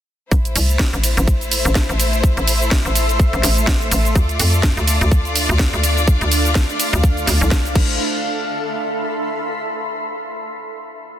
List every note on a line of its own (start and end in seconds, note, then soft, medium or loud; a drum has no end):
0.32 0.54 A1 medium
0.32 7.72 A3 medium
0.32 4.12 E4 medium
0.32 7.74 A4 medium
0.32 4.12 C5 loud
0.32 kick loud
0.32 closed hi-hat medium
0.32 shaker soft
0.45 closed hi-hat medium
0.45 shaker soft
0.56 0.91 C2 loud
0.56 open hi-hat loud
0.56 ride medium
0.56 shaker medium
0.69 closed hi-hat soft
0.69 shaker soft
0.79 4.16 E5 medium
0.79 kick loud
0.79 snare loud
0.79 closed hi-hat medium
0.79 shaker soft
0.93 1.15 A1 medium
0.93 closed hi-hat soft
0.93 shaker soft
1.04 5.31 C6 medium
1.04 open hi-hat medium
1.04 ride medium
1.04 shaker medium
1.17 1.63 A1 loud
1.17 closed hi-hat medium
1.17 shaker soft
1.28 kick loud
1.28 closed hi-hat medium
1.28 shaker soft
1.41 closed hi-hat soft
1.41 shaker soft
1.52 open hi-hat loud
1.52 ride medium
1.52 shaker medium
1.65 1.87 A1 loud
1.65 closed hi-hat soft
1.65 shaker soft
1.75 kick loud
1.75 snare loud
1.75 closed hi-hat medium
1.75 shaker soft
1.89 2.35 A1 loud
1.89 closed hi-hat soft
1.89 shaker soft
2.00 open hi-hat medium
2.00 ride medium
2.00 shaker medium
2.13 closed hi-hat soft
2.13 shaker soft
2.24 kick loud
2.24 closed hi-hat medium
2.24 shaker soft
2.37 2.83 A1 loud
2.37 closed hi-hat medium
2.37 shaker soft
2.48 open hi-hat loud
2.48 ride medium
2.48 shaker medium
2.61 closed hi-hat soft
2.61 shaker soft
2.71 kick loud
2.71 snare loud
2.71 closed hi-hat medium
2.71 shaker soft
2.85 3.31 A1 medium
2.85 closed hi-hat soft
2.85 shaker soft
2.95 open hi-hat medium
2.95 ride medium
2.95 shaker medium
3.09 closed hi-hat medium
3.09 shaker soft
3.19 kick loud
3.19 closed hi-hat medium
3.19 shaker soft
3.33 3.42 A1 loud
3.33 closed hi-hat soft
3.33 shaker soft
3.43 3.66 A1 loud
3.43 snare soft
3.43 open hi-hat loud
3.43 ride medium
3.43 shaker medium
3.57 closed hi-hat soft
3.57 shaker soft
3.67 3.90 A1 loud
3.67 kick loud
3.67 snare loud
3.67 closed hi-hat medium
3.67 shaker soft
3.81 closed hi-hat soft
3.81 shaker soft
3.91 4.14 A1 loud
3.91 open hi-hat medium
3.91 ride medium
3.91 shaker medium
4.05 closed hi-hat soft
4.05 shaker soft
4.15 4.38 D2 loud
4.15 7.75 D4 medium
4.15 7.72 F4 medium
4.15 7.72 D5 loud
4.15 kick loud
4.15 closed hi-hat medium
4.15 shaker soft
4.29 closed hi-hat medium
4.29 shaker soft
4.39 4.75 F2 medium
4.39 open hi-hat loud
4.39 ride medium
4.39 shaker medium
4.53 closed hi-hat soft
4.53 shaker soft
4.61 7.75 F5 medium
4.61 kick loud
4.61 snare loud
4.61 closed hi-hat medium
4.61 shaker soft
4.77 4.99 D2 loud
4.77 closed hi-hat soft
4.77 shaker soft
4.88 open hi-hat loud
4.88 ride medium
4.88 shaker medium
5.01 5.47 D2 loud
5.01 closed hi-hat medium
5.01 shaker soft
5.12 kick loud
5.12 closed hi-hat medium
5.12 shaker soft
5.25 closed hi-hat soft
5.25 shaker soft
5.36 open hi-hat loud
5.36 ride medium
5.36 shaker medium
5.49 5.71 D2 loud
5.49 shaker soft
5.59 kick loud
5.59 snare loud
5.59 closed hi-hat medium
5.59 shaker soft
5.73 6.19 D2 loud
5.73 closed hi-hat soft
5.73 shaker soft
5.84 open hi-hat medium
5.84 ride medium
5.84 shaker medium
5.97 closed hi-hat soft
5.97 shaker soft
6.08 kick loud
6.08 closed hi-hat medium
6.08 shaker soft
6.21 6.67 D2 loud
6.21 closed hi-hat medium
6.21 shaker soft
6.32 open hi-hat loud
6.32 ride medium
6.32 shaker medium
6.45 closed hi-hat soft
6.45 shaker soft
6.55 kick loud
6.55 snare loud
6.55 closed hi-hat medium
6.55 shaker soft
6.69 closed hi-hat soft
6.69 shaker soft
6.80 open hi-hat loud
6.80 ride medium
6.80 shaker medium
6.93 7.26 D2 loud
6.93 closed hi-hat medium
6.93 shaker soft
7.04 kick loud
7.04 closed hi-hat medium
7.04 shaker soft
7.17 closed hi-hat soft
7.17 shaker soft
7.27 7.39 D2 loud
7.27 snare soft
7.27 open hi-hat loud
7.27 ride medium
7.27 shaker medium
7.41 7.75 C2 loud
7.41 closed hi-hat soft
7.41 shaker soft
7.51 kick loud
7.51 snare loud
7.51 closed hi-hat medium
7.51 shaker soft
7.65 closed hi-hat soft
7.65 shaker soft
7.75 7.98 A1 loud
7.75 7.98 A3 medium
7.75 7.98 E4 medium
7.75 9.64 A4 medium
7.75 7.98 C5 medium
7.75 kick loud
7.75 crash medium
7.84 9.64 E5 medium
8.15 9.87 B5 medium
8.21 9.88 C6 medium